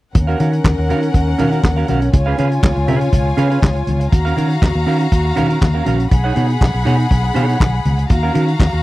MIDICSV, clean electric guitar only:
0, 0, Header, 1, 3, 480
1, 0, Start_track
1, 0, Key_signature, -6, "minor"
1, 0, Tempo, 497100
1, 140, Time_signature, 4, 2, 24, 8
1, 8525, End_track
2, 0, Start_track
2, 0, Title_t, "Clean electric guitar"
2, 0, Program_c, 0, 27
2, 263, Note_on_c, 0, 77, 70
2, 272, Note_on_c, 0, 70, 71
2, 279, Note_on_c, 0, 66, 57
2, 281, Note_on_c, 0, 61, 62
2, 367, Note_off_c, 0, 61, 0
2, 379, Note_off_c, 0, 66, 0
2, 379, Note_on_c, 0, 61, 50
2, 383, Note_off_c, 0, 70, 0
2, 387, Note_off_c, 0, 77, 0
2, 391, Note_on_c, 0, 66, 56
2, 394, Note_on_c, 0, 70, 61
2, 398, Note_on_c, 0, 77, 57
2, 499, Note_off_c, 0, 77, 0
2, 505, Note_off_c, 0, 70, 0
2, 514, Note_off_c, 0, 66, 0
2, 534, Note_off_c, 0, 61, 0
2, 861, Note_on_c, 0, 61, 68
2, 871, Note_on_c, 0, 66, 81
2, 875, Note_on_c, 0, 70, 70
2, 881, Note_on_c, 0, 77, 74
2, 981, Note_off_c, 0, 77, 0
2, 990, Note_off_c, 0, 70, 0
2, 994, Note_off_c, 0, 66, 0
2, 1053, Note_off_c, 0, 61, 0
2, 1337, Note_on_c, 0, 61, 89
2, 1345, Note_on_c, 0, 66, 80
2, 1350, Note_on_c, 0, 70, 76
2, 1357, Note_on_c, 0, 77, 93
2, 1453, Note_off_c, 0, 77, 0
2, 1458, Note_off_c, 0, 70, 0
2, 1464, Note_on_c, 0, 77, 50
2, 1466, Note_off_c, 0, 66, 0
2, 1470, Note_off_c, 0, 61, 0
2, 1470, Note_on_c, 0, 70, 50
2, 1478, Note_on_c, 0, 66, 53
2, 1482, Note_on_c, 0, 61, 44
2, 1569, Note_off_c, 0, 61, 0
2, 1577, Note_off_c, 0, 66, 0
2, 1578, Note_off_c, 0, 70, 0
2, 1580, Note_off_c, 0, 77, 0
2, 1705, Note_on_c, 0, 77, 61
2, 1714, Note_on_c, 0, 70, 64
2, 1719, Note_on_c, 0, 66, 57
2, 1725, Note_on_c, 0, 61, 42
2, 1808, Note_off_c, 0, 61, 0
2, 1814, Note_off_c, 0, 66, 0
2, 1819, Note_on_c, 0, 61, 65
2, 1821, Note_off_c, 0, 70, 0
2, 1826, Note_off_c, 0, 77, 0
2, 1826, Note_on_c, 0, 66, 68
2, 1833, Note_on_c, 0, 70, 69
2, 1838, Note_on_c, 0, 77, 69
2, 1941, Note_off_c, 0, 77, 0
2, 1948, Note_off_c, 0, 70, 0
2, 1954, Note_off_c, 0, 66, 0
2, 2013, Note_off_c, 0, 61, 0
2, 2182, Note_on_c, 0, 77, 75
2, 2190, Note_on_c, 0, 71, 73
2, 2194, Note_on_c, 0, 68, 68
2, 2199, Note_on_c, 0, 61, 65
2, 2285, Note_off_c, 0, 61, 0
2, 2293, Note_off_c, 0, 68, 0
2, 2296, Note_on_c, 0, 61, 57
2, 2300, Note_off_c, 0, 71, 0
2, 2304, Note_off_c, 0, 77, 0
2, 2305, Note_on_c, 0, 68, 73
2, 2312, Note_on_c, 0, 71, 66
2, 2316, Note_on_c, 0, 77, 69
2, 2408, Note_off_c, 0, 77, 0
2, 2416, Note_off_c, 0, 71, 0
2, 2424, Note_off_c, 0, 68, 0
2, 2452, Note_off_c, 0, 61, 0
2, 2775, Note_on_c, 0, 61, 69
2, 2782, Note_on_c, 0, 68, 73
2, 2787, Note_on_c, 0, 71, 80
2, 2793, Note_on_c, 0, 77, 70
2, 2894, Note_off_c, 0, 77, 0
2, 2903, Note_off_c, 0, 71, 0
2, 2909, Note_off_c, 0, 68, 0
2, 2974, Note_off_c, 0, 61, 0
2, 3253, Note_on_c, 0, 61, 81
2, 3258, Note_on_c, 0, 68, 84
2, 3266, Note_on_c, 0, 71, 92
2, 3271, Note_on_c, 0, 77, 104
2, 3370, Note_off_c, 0, 77, 0
2, 3376, Note_off_c, 0, 71, 0
2, 3382, Note_off_c, 0, 68, 0
2, 3382, Note_on_c, 0, 77, 56
2, 3387, Note_on_c, 0, 71, 59
2, 3388, Note_off_c, 0, 61, 0
2, 3394, Note_on_c, 0, 68, 52
2, 3400, Note_on_c, 0, 61, 46
2, 3483, Note_off_c, 0, 61, 0
2, 3489, Note_off_c, 0, 68, 0
2, 3495, Note_off_c, 0, 71, 0
2, 3499, Note_off_c, 0, 77, 0
2, 4104, Note_on_c, 0, 77, 80
2, 4111, Note_on_c, 0, 70, 65
2, 4119, Note_on_c, 0, 66, 59
2, 4123, Note_on_c, 0, 61, 56
2, 4200, Note_off_c, 0, 61, 0
2, 4207, Note_off_c, 0, 66, 0
2, 4212, Note_on_c, 0, 61, 55
2, 4213, Note_off_c, 0, 70, 0
2, 4218, Note_on_c, 0, 66, 60
2, 4220, Note_off_c, 0, 77, 0
2, 4224, Note_on_c, 0, 70, 57
2, 4231, Note_on_c, 0, 77, 58
2, 4329, Note_off_c, 0, 77, 0
2, 4340, Note_off_c, 0, 70, 0
2, 4344, Note_off_c, 0, 66, 0
2, 4370, Note_off_c, 0, 61, 0
2, 4696, Note_on_c, 0, 61, 76
2, 4705, Note_on_c, 0, 66, 70
2, 4708, Note_on_c, 0, 70, 80
2, 4715, Note_on_c, 0, 77, 84
2, 4815, Note_off_c, 0, 77, 0
2, 4822, Note_off_c, 0, 70, 0
2, 4828, Note_off_c, 0, 66, 0
2, 4891, Note_off_c, 0, 61, 0
2, 5172, Note_on_c, 0, 61, 88
2, 5178, Note_on_c, 0, 66, 83
2, 5185, Note_on_c, 0, 70, 90
2, 5188, Note_on_c, 0, 77, 91
2, 5289, Note_off_c, 0, 77, 0
2, 5296, Note_off_c, 0, 70, 0
2, 5301, Note_off_c, 0, 66, 0
2, 5301, Note_on_c, 0, 77, 49
2, 5307, Note_on_c, 0, 70, 55
2, 5308, Note_off_c, 0, 61, 0
2, 5312, Note_on_c, 0, 66, 51
2, 5319, Note_on_c, 0, 61, 49
2, 5408, Note_off_c, 0, 61, 0
2, 5413, Note_off_c, 0, 66, 0
2, 5415, Note_off_c, 0, 70, 0
2, 5420, Note_off_c, 0, 77, 0
2, 5542, Note_on_c, 0, 77, 62
2, 5549, Note_on_c, 0, 70, 60
2, 5552, Note_on_c, 0, 66, 57
2, 5560, Note_on_c, 0, 61, 53
2, 5644, Note_off_c, 0, 61, 0
2, 5652, Note_off_c, 0, 66, 0
2, 5656, Note_on_c, 0, 61, 69
2, 5660, Note_off_c, 0, 70, 0
2, 5662, Note_off_c, 0, 77, 0
2, 5664, Note_on_c, 0, 66, 65
2, 5671, Note_on_c, 0, 70, 63
2, 5674, Note_on_c, 0, 77, 77
2, 5775, Note_off_c, 0, 77, 0
2, 5784, Note_off_c, 0, 70, 0
2, 5791, Note_off_c, 0, 66, 0
2, 5851, Note_off_c, 0, 61, 0
2, 6024, Note_on_c, 0, 78, 79
2, 6030, Note_on_c, 0, 73, 71
2, 6039, Note_on_c, 0, 68, 65
2, 6044, Note_on_c, 0, 63, 65
2, 6124, Note_off_c, 0, 63, 0
2, 6131, Note_off_c, 0, 68, 0
2, 6135, Note_on_c, 0, 63, 54
2, 6138, Note_off_c, 0, 73, 0
2, 6143, Note_on_c, 0, 68, 56
2, 6146, Note_off_c, 0, 78, 0
2, 6150, Note_on_c, 0, 73, 61
2, 6158, Note_on_c, 0, 78, 62
2, 6253, Note_off_c, 0, 78, 0
2, 6260, Note_off_c, 0, 73, 0
2, 6266, Note_off_c, 0, 68, 0
2, 6292, Note_off_c, 0, 63, 0
2, 6614, Note_on_c, 0, 63, 74
2, 6620, Note_on_c, 0, 68, 71
2, 6626, Note_on_c, 0, 73, 79
2, 6634, Note_on_c, 0, 78, 79
2, 6734, Note_off_c, 0, 78, 0
2, 6742, Note_off_c, 0, 73, 0
2, 6746, Note_off_c, 0, 68, 0
2, 6810, Note_off_c, 0, 63, 0
2, 7089, Note_on_c, 0, 63, 74
2, 7097, Note_on_c, 0, 68, 79
2, 7101, Note_on_c, 0, 73, 76
2, 7109, Note_on_c, 0, 78, 76
2, 7206, Note_off_c, 0, 78, 0
2, 7212, Note_off_c, 0, 73, 0
2, 7217, Note_off_c, 0, 68, 0
2, 7217, Note_on_c, 0, 78, 56
2, 7223, Note_on_c, 0, 73, 46
2, 7224, Note_off_c, 0, 63, 0
2, 7229, Note_on_c, 0, 68, 43
2, 7235, Note_on_c, 0, 63, 48
2, 7327, Note_off_c, 0, 63, 0
2, 7331, Note_off_c, 0, 68, 0
2, 7335, Note_off_c, 0, 73, 0
2, 7339, Note_off_c, 0, 78, 0
2, 7945, Note_on_c, 0, 77, 67
2, 7949, Note_on_c, 0, 70, 72
2, 7955, Note_on_c, 0, 66, 61
2, 7961, Note_on_c, 0, 61, 50
2, 8040, Note_off_c, 0, 61, 0
2, 8047, Note_off_c, 0, 66, 0
2, 8051, Note_on_c, 0, 61, 61
2, 8052, Note_off_c, 0, 70, 0
2, 8057, Note_off_c, 0, 77, 0
2, 8059, Note_on_c, 0, 66, 63
2, 8063, Note_on_c, 0, 70, 63
2, 8068, Note_on_c, 0, 77, 63
2, 8166, Note_off_c, 0, 77, 0
2, 8174, Note_off_c, 0, 70, 0
2, 8178, Note_off_c, 0, 66, 0
2, 8210, Note_off_c, 0, 61, 0
2, 8525, End_track
3, 0, Start_track
3, 0, Title_t, "Muted clean electric guitar strokes"
3, 144, Note_on_c, 9, 29, 37
3, 240, Note_off_c, 9, 29, 0
3, 511, Note_on_c, 9, 29, 40
3, 607, Note_off_c, 9, 29, 0
3, 625, Note_on_c, 9, 29, 45
3, 722, Note_off_c, 9, 29, 0
3, 757, Note_on_c, 9, 29, 40
3, 853, Note_off_c, 9, 29, 0
3, 992, Note_on_c, 9, 29, 48
3, 1089, Note_off_c, 9, 29, 0
3, 1102, Note_on_c, 9, 29, 39
3, 1199, Note_off_c, 9, 29, 0
3, 1233, Note_on_c, 9, 29, 38
3, 1329, Note_off_c, 9, 29, 0
3, 1580, Note_on_c, 9, 29, 34
3, 1677, Note_off_c, 9, 29, 0
3, 1952, Note_on_c, 9, 29, 49
3, 2049, Note_off_c, 9, 29, 0
3, 2056, Note_on_c, 9, 29, 48
3, 2153, Note_off_c, 9, 29, 0
3, 2419, Note_on_c, 9, 29, 46
3, 2516, Note_off_c, 9, 29, 0
3, 2539, Note_on_c, 9, 29, 38
3, 2635, Note_off_c, 9, 29, 0
3, 2665, Note_on_c, 9, 29, 37
3, 2761, Note_off_c, 9, 29, 0
3, 2906, Note_on_c, 9, 29, 49
3, 3003, Note_off_c, 9, 29, 0
3, 3024, Note_on_c, 9, 29, 44
3, 3120, Note_off_c, 9, 29, 0
3, 3146, Note_on_c, 9, 29, 51
3, 3242, Note_off_c, 9, 29, 0
3, 3624, Note_on_c, 9, 29, 40
3, 3720, Note_off_c, 9, 29, 0
3, 3862, Note_on_c, 9, 29, 44
3, 3958, Note_off_c, 9, 29, 0
3, 3976, Note_on_c, 9, 29, 39
3, 4073, Note_off_c, 9, 29, 0
3, 4341, Note_on_c, 9, 29, 47
3, 4438, Note_off_c, 9, 29, 0
3, 4457, Note_on_c, 9, 29, 43
3, 4553, Note_off_c, 9, 29, 0
3, 4586, Note_on_c, 9, 29, 40
3, 4683, Note_off_c, 9, 29, 0
3, 4826, Note_on_c, 9, 29, 43
3, 4923, Note_off_c, 9, 29, 0
3, 4943, Note_on_c, 9, 29, 36
3, 5040, Note_off_c, 9, 29, 0
3, 5070, Note_on_c, 9, 29, 44
3, 5167, Note_off_c, 9, 29, 0
3, 5787, Note_on_c, 9, 29, 37
3, 5883, Note_off_c, 9, 29, 0
3, 5900, Note_on_c, 9, 29, 40
3, 5996, Note_off_c, 9, 29, 0
3, 6265, Note_on_c, 9, 29, 39
3, 6361, Note_off_c, 9, 29, 0
3, 6379, Note_on_c, 9, 29, 36
3, 6476, Note_off_c, 9, 29, 0
3, 6504, Note_on_c, 9, 29, 43
3, 6600, Note_off_c, 9, 29, 0
3, 6745, Note_on_c, 9, 29, 43
3, 6842, Note_off_c, 9, 29, 0
3, 6859, Note_on_c, 9, 29, 38
3, 6956, Note_off_c, 9, 29, 0
3, 6982, Note_on_c, 9, 29, 38
3, 7079, Note_off_c, 9, 29, 0
3, 7346, Note_on_c, 9, 29, 46
3, 7443, Note_off_c, 9, 29, 0
3, 7472, Note_on_c, 9, 29, 39
3, 7568, Note_off_c, 9, 29, 0
3, 7706, Note_on_c, 9, 29, 43
3, 7803, Note_off_c, 9, 29, 0
3, 7816, Note_on_c, 9, 29, 41
3, 7913, Note_off_c, 9, 29, 0
3, 8177, Note_on_c, 9, 29, 42
3, 8274, Note_off_c, 9, 29, 0
3, 8295, Note_on_c, 9, 29, 36
3, 8391, Note_off_c, 9, 29, 0
3, 8425, Note_on_c, 9, 29, 39
3, 8521, Note_off_c, 9, 29, 0
3, 8525, End_track
0, 0, End_of_file